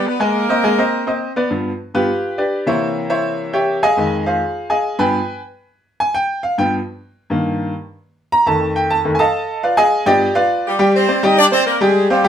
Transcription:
0.00 0.15 B3 medium
0.00 0.15 B4 medium
0.00 0.15 D5 medium
0.07 0.21 B3 medium
0.07 0.21 B4 medium
0.20 0.44 G#3 medium
0.20 1.22 A#3 medium
0.20 0.44 G#4 medium
0.20 1.22 A#4 medium
0.20 0.44 G#5 medium
0.49 0.61 C4 medium
0.49 0.61 C5 medium
0.49 0.61 D#5 medium
0.64 0.75 G#3 medium
0.64 0.76 G#4 medium
0.64 0.76 G#5 medium
0.78 1.02 C4 medium
0.78 1.02 C5 medium
0.78 1.02 D#5 medium
1.07 1.31 C4 medium
1.07 1.31 C5 medium
1.07 1.31 D#5 medium
1.36 1.48 B3 medium
1.36 1.48 B4 medium
1.36 1.48 D5 medium
1.50 1.70 G2 medium
1.50 1.70 F3 medium
1.50 1.70 B3 medium
1.94 2.07 G2 soft
1.94 2.07 F3 soft
1.94 2.08 B3 medium
1.94 2.35 F4 medium
1.94 2.35 G4 medium
1.94 2.35 B4 medium
2.38 2.65 D4 medium
2.38 2.65 G4 soft
2.38 2.65 B4 medium
2.38 2.65 D5 medium
2.66 3.78 C3 medium
2.66 3.79 E3 medium
2.66 3.79 A#3 medium
2.66 3.07 E4 medium
2.66 3.07 C5 medium
2.66 3.07 C#5 medium
2.66 3.07 E5 medium
3.10 3.51 E4 medium
3.10 3.50 C5 medium
3.10 3.51 C#5 medium
3.10 3.50 E5 medium
3.53 3.81 G4 medium
3.53 3.81 C#5 medium
3.53 3.81 E5 medium
3.53 3.80 G5 medium
3.83 4.23 G#4 medium
3.83 4.23 D#5 medium
3.83 4.23 F5 medium
3.83 4.23 G#5 medium
3.97 4.38 F2 soft
3.97 4.39 D#3 soft
3.97 4.39 G#3 medium
4.26 4.67 F4 soft
4.26 4.67 G#4 medium
4.26 4.67 C5 medium
4.26 4.67 F5 medium
4.70 4.97 G#4 medium
4.70 4.97 D#5 medium
4.70 4.97 F5 medium
4.70 4.97 G#5 medium
4.98 5.18 G2 medium
4.98 5.18 F3 medium
4.98 5.18 B3 medium
4.98 5.39 B4 medium
4.98 5.39 G5 medium
4.98 5.40 G#5 medium
4.98 5.39 B5 medium
6.00 6.14 G#5 medium
6.15 6.42 G5 medium
6.43 6.57 F5 medium
6.58 6.77 G2 medium
6.58 6.78 F3 soft
6.58 6.78 B3 medium
6.58 6.72 G5 medium
7.30 7.72 G2 medium
7.30 7.72 D#3 medium
7.30 7.72 A#3 medium
8.32 8.46 A#5 loud
8.46 9.03 F2 medium
8.46 9.04 D#3 medium
8.46 9.04 A3 medium
8.46 8.74 A5 medium
8.76 8.90 G5 medium
8.90 8.99 A5 loud
9.05 9.18 F2 medium
9.05 9.18 D#3 medium
9.05 9.18 A3 medium
9.15 9.17 G#5 medium
9.19 9.60 A4 medium
9.19 9.60 D#5 medium
9.19 9.60 F5 medium
9.19 9.60 A5 loud
9.63 9.77 F4 medium
9.63 9.77 B4 medium
9.63 9.77 D5 medium
9.63 9.76 F5 medium
9.77 10.04 G#4 medium
9.77 10.05 D#5 medium
9.77 10.05 F5 medium
9.77 10.04 G#5 loud
10.06 10.25 G2 medium
10.06 10.26 F3 medium
10.06 10.26 B3 medium
10.06 10.33 G4 medium
10.06 10.34 D5 medium
10.06 10.34 D#5 medium
10.06 10.33 G5 loud
10.35 10.69 F4 medium
10.35 10.69 B4 medium
10.35 10.69 D5 medium
10.35 10.69 F5 loud
10.67 10.93 G3 medium
10.67 10.93 G4 medium
10.79 11.03 G3 loud
10.79 11.03 G4 medium
10.79 11.03 G5 medium
10.95 11.21 C4 medium
10.95 11.21 C5 medium
11.08 11.20 C4 medium
11.08 11.20 C5 medium
11.08 11.20 D5 medium
11.23 11.47 G3 medium
11.23 11.38 D#4 medium
11.23 11.47 G4 medium
11.23 11.38 D#5 loud
11.23 11.47 G5 medium
11.39 11.45 D4 loud
11.39 11.45 D5 loud
11.52 11.75 C4 medium
11.52 11.65 C4 loud
11.52 11.76 C5 medium
11.52 11.65 C5 loud
11.52 11.76 D5 medium
11.66 11.79 A#3 medium
11.66 11.79 A#4 loud
11.81 12.04 G3 medium
11.81 12.10 G#3 medium
11.81 12.05 G4 medium
11.81 12.10 G#4 medium
11.81 12.05 G5 medium
12.10 12.28 G3 medium
12.10 12.22 C4 medium
12.10 12.28 G4 medium
12.10 12.22 C5 medium
12.10 12.22 F5 medium
12.24 12.28 G3 medium
12.24 12.28 G4 medium
12.24 12.28 G5 loud

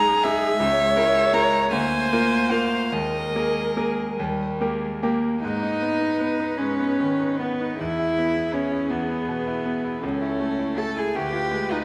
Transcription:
0.00 0.62 B1 medium
0.00 0.24 G#3 medium
0.00 0.55 G#3 loud
0.00 0.25 D#4 medium
0.00 0.25 G#4 medium
0.00 0.61 G#4 loud
0.00 0.25 A#5 loud
0.23 0.56 G#3 medium
0.23 0.57 D#4 medium
0.23 0.57 G#4 medium
0.23 1.35 E5 loud
0.59 0.95 C#2 medium
0.59 1.73 G#3 medium
0.59 1.74 C#5 loud
0.96 1.29 G#3 medium
0.96 1.30 E4 medium
0.96 1.30 A#4 medium
1.33 1.68 G#3 medium
1.33 1.68 E4 medium
1.33 1.69 A#4 medium
1.33 1.71 A#5 loud
1.71 2.10 D2 medium
1.71 2.94 A#3 medium
1.71 2.93 C5 loud
1.71 2.52 G#5 loud
2.12 2.48 A#3 medium
2.12 2.48 F4 medium
2.12 2.49 A#4 medium
2.51 2.89 A#3 medium
2.51 2.89 F4 medium
2.51 2.89 A#4 medium
2.51 2.94 F5 loud
2.92 3.33 D#2 medium
2.92 4.18 G#3 medium
2.92 4.77 A#4 medium
2.92 4.18 D#5 loud
3.35 3.73 A#3 medium
3.35 3.73 G#4 medium
3.35 3.73 A#4 medium
3.76 4.14 A#3 medium
3.76 4.14 G#4 medium
3.76 4.14 A#4 medium
4.18 4.59 D#2 medium
4.18 4.61 G3 medium
4.59 5.04 G#3 medium
4.59 4.98 A#3 medium
4.59 4.98 G4 medium
4.59 4.98 A#4 medium
5.02 5.38 A#3 medium
5.02 5.42 A#3 medium
5.02 5.39 G4 medium
5.02 5.39 A#4 medium
5.42 6.57 G#2 medium
5.42 6.59 D#4 loud
5.42 7.76 B4 medium
5.42 6.54 D#5 medium
5.63 5.92 D#4 medium
5.82 6.12 B3 soft
6.01 6.31 D#4 soft
6.20 6.51 B3 soft
6.40 6.70 D#4 medium
6.58 7.76 G#2 medium
6.58 7.40 C#4 medium
6.58 7.40 C#5 medium
6.80 7.11 B3 medium
7.00 7.32 D#3 soft
7.19 7.52 D#4 soft
7.38 7.78 B3 medium
7.38 7.73 B3 soft
7.38 7.81 B4 medium
7.61 7.80 D#4 soft
7.79 8.89 E2 medium
7.79 8.55 E4 medium
7.79 10.04 G#4 medium
7.79 8.55 E5 medium
7.99 8.29 E4 medium
8.18 8.47 B3 soft
8.36 8.65 E4 soft
8.53 8.83 B3 medium
8.53 8.91 C#4 medium
8.53 8.90 C#5 medium
8.72 9.02 E4 soft
8.90 10.00 E2 medium
8.90 10.02 B3 medium
8.90 10.05 B4 medium
9.09 9.39 B3 soft
9.28 9.58 B2 soft
9.47 9.77 E4 soft
9.66 9.96 B3 soft
9.85 10.03 E4 soft
10.03 11.11 C#2 medium
10.03 10.79 C#4 medium
10.03 11.16 A4 medium
10.03 10.80 C#5 medium
10.22 10.52 E4 medium
10.40 10.70 A3 soft
10.59 10.89 E4 soft
10.78 11.07 A3 soft
10.78 11.00 A4 medium
10.78 10.96 A5 medium
10.96 11.15 E4 medium
10.96 11.17 G#4 medium
10.96 11.17 G#5 medium
11.15 11.84 D2 medium
11.15 11.73 G4 loud
11.15 11.84 B4 medium
11.15 11.72 G5 medium
11.33 11.62 F4 soft
11.51 11.81 G#3 soft
11.70 11.84 D#4 medium
11.70 11.84 F4 soft
11.70 11.84 D#5 medium

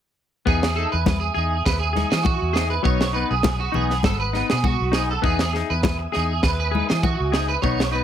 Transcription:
0.46 0.85 E2 loud
0.46 0.65 B3 medium
0.46 0.66 D#4 medium
0.46 0.75 G#4 medium
0.46 0.66 G#4 medium
0.46 2.84 E5 medium
0.46 2.84 G#5 medium
0.46 5.21 D#6 medium
0.46 kick medium
0.46 muted conga soft
0.63 snare medium
0.76 0.96 D#4 soft
0.76 0.95 G#4 medium
0.76 0.92 A4 medium
0.92 1.29 E2 medium
0.92 1.19 B4 medium
1.06 kick medium
1.06 snare medium
1.06 high conga loud
1.20 1.33 G#4 medium
1.34 1.61 E2 medium
1.34 1.56 D#4 soft
1.34 1.64 G#4 medium
1.34 1.54 G#4 medium
1.34 muted conga soft
1.65 2.04 D#2 loud
1.65 1.79 B4 loud
1.65 kick loud
1.65 snare medium
1.65 muted conga soft
1.79 2.09 G#4 medium
1.93 2.15 D#4 medium
1.93 2.13 G#4 medium
1.93 snare soft
1.93 muted conga soft
1.93 high conga medium
2.10 2.37 E3 medium
2.10 2.25 G#4 medium
2.10 snare medium
2.23 2.53 F#4 medium
2.23 kick loud
2.23 high conga medium
2.42 2.78 E2 medium
2.53 2.75 D#4 medium
2.53 2.73 G#4 medium
2.53 2.70 G#4 medium
2.53 snare medium
2.70 2.83 B4 medium
2.83 3.23 B1 loud
2.83 3.03 F#3 medium
2.83 3.04 B3 loud
2.83 3.04 D#4 medium
2.83 3.13 C#5 loud
2.83 5.22 F#5 medium
2.83 5.22 B5 medium
2.83 kick loud
2.83 muted conga soft
3.01 snare medium
3.13 3.34 B3 medium
3.13 3.33 D#4 medium
3.13 3.30 B4 medium
3.31 3.67 B1 medium
3.31 3.59 G#4 medium
3.43 kick loud
3.43 snare medium
3.43 high conga loud
3.60 3.74 F#4 medium
3.72 4.00 B1 medium
3.72 3.94 B3 medium
3.72 3.92 D#4 medium
3.72 4.03 G#4 medium
3.72 muted conga soft
3.72 low conga medium
3.90 snare soft
4.03 4.42 G#1 loud
4.03 4.19 A4 medium
4.03 kick loud
4.03 snare medium
4.03 muted conga soft
4.03 high conga medium
4.20 4.49 B4 medium
4.33 4.54 B3 medium
4.33 4.53 D#4 medium
4.33 snare soft
4.33 muted conga soft
4.50 4.76 B2 medium
4.50 4.64 G#4 medium
4.50 snare medium
4.64 4.93 F#4 medium
4.64 kick medium
4.64 high conga medium
4.81 5.16 B1 loud
4.92 5.12 D#4 medium
4.92 5.09 G#4 medium
4.92 snare medium
5.11 5.24 A4 medium
5.22 5.62 E2 loud
5.22 5.42 B3 medium
5.22 5.42 D#4 medium
5.22 5.43 G#4 medium
5.22 5.53 G#4 loud
5.22 7.60 E5 medium
5.22 7.60 G#5 medium
5.22 8.04 D#6 medium
5.22 kick medium
5.22 muted conga soft
5.39 snare medium
5.53 5.74 D#4 soft
5.53 5.72 G#4 medium
5.53 muted clean electric guitar stroke medium
5.53 snare soft
5.70 6.06 E2 medium
5.70 5.98 B4 medium
5.83 kick medium
5.83 snare medium
5.83 high conga loud
5.99 muted clean electric guitar stroke medium
6.12 6.33 D#4 medium
6.12 6.32 G#4 medium
6.12 6.42 G#4 medium
6.12 snare soft
6.12 muted conga soft
6.17 6.40 E2 loud
6.43 6.81 D#2 loud
6.43 6.58 B4 loud
6.43 kick medium
6.43 snare medium
6.43 muted conga soft
6.60 6.88 B4 medium
6.71 6.93 D#4 medium
6.71 6.91 G#4 medium
6.71 muted conga soft
6.71 high conga medium
6.89 7.15 E3 medium
6.89 7.02 G#4 medium
6.89 snare medium
7.03 7.31 F#4 medium
7.03 kick medium
7.03 high conga medium
7.20 7.56 C#2 medium
7.32 7.53 D#4 medium
7.32 7.51 G#4 medium
7.32 7.48 G#4 medium
7.32 snare medium
7.48 7.62 B4 medium
7.62 8.01 B1 loud
7.62 7.82 B3 medium
7.62 7.83 D#4 medium
7.62 7.91 C#5 medium
7.62 8.04 F#5 medium
7.62 8.04 B5 medium
7.62 muted clean electric guitar stroke medium
7.62 kick loud
7.62 muted conga soft
7.80 snare medium
7.91 8.04 B3 soft
7.91 8.04 D#4 medium
7.91 8.04 B4 medium

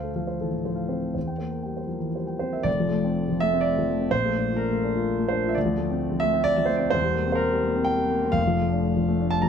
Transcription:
0.00 1.12 D2 soft
0.00 0.29 A3 soft
0.00 0.23 A4 soft
0.00 0.27 C5 soft
0.00 0.16 F5 soft
0.16 0.55 F3 soft
0.16 0.35 F5 soft
0.27 0.47 C5 soft
0.40 0.65 E3 soft
0.40 0.60 A4 soft
0.52 0.72 A2 soft
0.65 1.05 F3 soft
0.65 0.85 C5 soft
0.75 0.96 F5 soft
0.88 1.14 C4 soft
0.88 1.10 C5 soft
1.02 1.15 A4 soft
1.15 2.63 E2 soft
1.15 1.35 C5 soft
1.27 1.48 G5 soft
1.38 1.81 A#3 soft
1.38 1.60 C5 soft
1.51 1.72 A#4 soft
1.63 2.06 G3 soft
1.63 1.85 G5 soft
1.77 1.98 C5 soft
1.87 2.14 F3 soft
1.87 2.09 A#4 soft
2.00 2.22 E3 soft
2.15 2.56 G3 soft
2.15 2.36 C5 soft
2.27 2.48 G5 soft
2.39 2.66 C4 soft
2.39 2.61 C5 medium
2.53 2.67 A#4 soft
2.53 2.66 E5 medium
2.63 4.06 F1 medium
2.63 4.07 F2 medium
2.63 3.38 D5 medium
2.80 2.99 F3 medium
2.89 3.10 A3 soft
3.04 3.43 C4 soft
3.29 3.48 F3 soft
3.40 3.61 A3 soft
3.40 3.64 E5 loud
3.54 3.91 C4 medium
3.61 4.10 D5 medium
3.78 3.96 F3 soft
3.89 4.08 A3 soft
4.01 4.12 C4 soft
4.11 5.51 A#1 medium
4.11 5.51 A#2 medium
4.11 4.59 C5 loud
4.25 4.44 A3 medium
4.37 4.56 D4 soft
4.51 4.88 F4 soft
4.56 5.06 A#4 medium
4.71 4.91 A3 medium
4.84 5.03 D4 soft
4.95 5.34 F4 medium
5.19 5.38 A3 medium
5.28 5.50 D4 medium
5.28 5.47 C5 medium
5.45 5.56 F4 medium
5.45 5.55 E5 medium
5.55 6.93 D2 medium
5.55 6.25 D5 medium
5.65 5.85 F3 medium
5.77 5.97 A3 medium
5.90 6.28 C4 soft
6.11 6.31 F3 soft
6.20 6.42 A3 medium
6.20 6.46 E5 loud
6.33 6.72 C4 medium
6.44 6.58 D5 loud
6.56 6.78 F3 medium
6.56 6.70 E5 medium
6.66 6.89 A3 medium
6.66 6.81 C5 medium
6.77 6.93 C4 medium
6.77 6.92 D5 medium
6.90 8.31 E1 medium
6.90 8.32 E2 medium
6.90 7.31 C5 loud
7.03 7.24 G3 medium
7.13 7.35 A#3 medium
7.27 7.67 C4 medium
7.32 7.86 A#4 medium
7.32 7.41 C5 medium
7.51 7.72 G3 medium
7.63 7.84 A#3 medium
7.76 8.15 C4 medium
7.85 8.35 G5 loud
7.97 8.18 G3 medium
8.11 8.31 A#3 medium
8.24 8.37 C4 medium
8.32 9.49 F1 medium
8.32 9.49 F2 medium
8.32 9.30 F5 loud
8.47 8.68 F3 medium
8.61 8.81 A3 soft
8.72 9.11 D4 medium
8.97 9.16 F3 medium
9.08 9.28 A3 medium
9.21 9.49 D4 medium
9.31 9.44 A5 loud
9.42 9.49 F3 medium
9.42 9.49 A#5 medium

